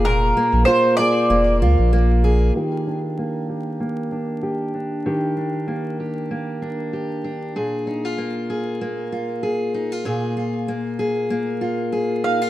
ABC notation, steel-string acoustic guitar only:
X:1
M:4/4
L:1/16
Q:"Swing 16ths" 1/4=96
K:Eb
V:1 name="Steel-string acoustic guitar"
[B,,B,FA]2 B,2 F2 A2 B,2 F2 B,2 A2 | [E,G]2 D2 B,2 G2 B,2 D2 G2 D2 | [E,G]2 D2 B,2 G2 B,2 D2 G2 D2 | [B,,A]2 E F B,2 A2 B,2 F2 A2 E F |
[B,,A]2 F2 B,2 A2 B,2 F2 A2 E F |]